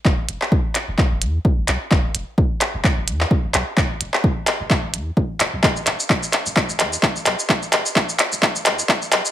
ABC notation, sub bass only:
X:1
M:4/4
L:1/16
Q:"Swing 16ths" 1/4=129
K:Clyd
V:1 name="Sub bass" clef=bass
E,,, z E,,, z4 E,,, z E,,, E,, z2 E,,, B,,, z | E,,, z E,,, z4 E,,, z E,,, E,, z2 E,,, B,,, z | E,,, z E,,, z4 E,,, z E,,, E,, z3 E,,, B,,, | E,,, z E,,, z4 E,,, z E,,, E,, z2 E,,, B,,, z |
E,,, z E,,, z4 E,,, z E,,, E,, z2 E,,, B,,, z |]